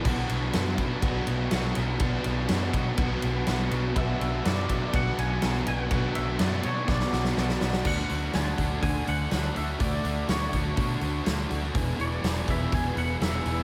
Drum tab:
CC |x---------------|----------------|----------------|----------------|
RD |--x-x-x-x-x-x-x-|x-x-x-x-x-x-x-x-|x-x-x-x-x-x-x-x-|x-x-x-x---------|
HH |----------------|----------------|----------------|----------------|
SD |----o-------o---|----o-------o---|----o-------o---|----o---oooooooo|
BD |o-----o-o-------|o-----o-o-------|o-----o-o-------|o-------o-------|

CC |x---------------|----------------|----------------|
RD |----------------|----------------|----------------|
HH |--o-o-o-o-o-o-o-|o-o-o-o-o-o-o-o-|o-o-o-o-o-o-o-o-|
SD |----o-------o---|----o-------o---|----o-------o---|
BD |o-----o-o-------|o-----o-o-------|o-----o-o-------|